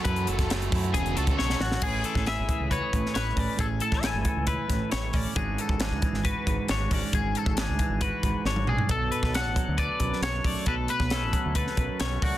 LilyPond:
<<
  \new Staff \with { instrumentName = "Clean electric guitar" } { \time 4/4 \key e \mixolydian \tempo 4 = 136 b'8 a'8 r4 gis'8 a'8 cis''4 | gis'8 a'8 gis'4 b'4 cis''8 d''8 | gis'8 a'8 gis''4 b'4 cis''8 d''8 | gis'8 a'8 gis'4 b'4 cis''8 d''8 |
gis'8 a'8 gis'4 b'4 cis''8 d''8 | a'8 b'8 a'4 b'4 cis''8 d''8 | a'8 b'8 a'4 b'4 cis''8 d''8 | }
  \new Staff \with { instrumentName = "Clean electric guitar" } { \time 4/4 \key e \mixolydian r2. r8 fis'8 | gis'4 e''4 cis''4 b'4 | a'8 a'2. r8 | r1 |
r2. r8 gis'8 | a'4 fis''4 d''4 cis''4 | b'8 b'2. fis'8 | }
  \new Staff \with { instrumentName = "Overdriven electric guitar" } { \time 4/4 \key e \mixolydian <fis cis' fis' a'>2 <fis cis' fis' a'>8 <fis cis' fis' a'>4 r8 | r1 | r1 | r1 |
r1 | r1 | r1 | }
  \new Staff \with { instrumentName = "Clean electric guitar" } { \time 4/4 \key e \mixolydian << { <e' a'>4 a8 e'4 a'4 a'8 | <e cis' e'>4 e'4 fis'16 gis'8. e'8 cis'8 | r4 e'4 e'4 e'8 cis'8 | <e cis' d' fis'>4 d'4 fis'4 d'8 cis'8 |
r4 d'4 fis'4 d'8 cis'8 | r4 d'4 a'4 d'8 a8~ | a4 cis'4 a'4 cis'8 a8 | } \\ { <fis, e>8 fis4. cis4. fis,8 | a,4. e4 a,4. | a,4. e4 a,4. | gis,4. e4 gis,4. |
gis,4. e4 gis,4. | b,4. fis4 fis,4. | b,4. fis4 fis,4. | } >> }
  \new Staff \with { instrumentName = "Fingered electric bass" } { \clef bass \time 4/4 \key e \mixolydian fis,8 fis,,4 fis,8 e,,8 cis,8 b,,8 a,,8 | a,,8 r16 a,,8 gis,,16 r16 cis,8 r16 a,,16 r16 a,,8 a,,16 r16 | a,,8 r16 a,,8 gis,,16 r16 cis,8 r16 a,,16 r16 a,,8 a,,16 r16 | gis,,8 r16 gis,,8 d,16 r16 gis,,8 r16 gis,,16 r16 gis,,8 gis,,16 r16 |
gis,,8 r16 gis,,8 d,16 r16 gis,,8 r16 gis,,16 r16 gis,,8 a,,16 r16 | b,,8 r16 b,,8 a,,16 r16 d,8 r16 b,,16 r16 b,,8 b,,16 r16 | b,,8 r16 b,,8 a,,16 r16 d,8 r16 b,,16 r16 b,,8 cis,16 r16 | }
  \new DrumStaff \with { instrumentName = "Drums" } \drummode { \time 4/4 <hh bd>16 hh16 hh16 <hh bd sn>16 <hh sn>16 hh16 <hho bd>16 hh16 <hh bd>16 hh16 hh16 <hh bd>16 sn16 sn16 sn16 sn16 | <cymc bd>8 hh16 <bd sn>16 <hh sn>8 <hh bd>8 <hh bd>8 <hh bd>16 sn16 <hh sn>8 <hho bd>8 | <hh bd>8 hh16 <bd sn>16 <hh sn>8 <hh bd>8 <hh bd>8 <hh bd sn>8 <hh sn>8 <hho bd>8 | <hh bd>8 hh16 bd16 <hh sn>8 <hh bd>16 sn16 <hh bd>8 <hh bd>8 <hh sn>8 <hho bd>8 |
<hh bd>8 hh16 bd16 <hh sn>8 <hh bd>8 <hh bd>8 <hh bd>8 sn16 tommh16 toml16 tomfh16 | <hh bd>8 hh16 <bd sn>16 <hh sn>8 <hh bd>8 <hh bd>8 <hh bd>16 sn16 <hh sn>8 <hho bd>8 | <hh bd>8 hh16 <bd sn>16 <hh sn>8 <hh bd>8 <hh bd>16 sn16 <hh bd>8 <hh sn>8 <hho bd>8 | }
>>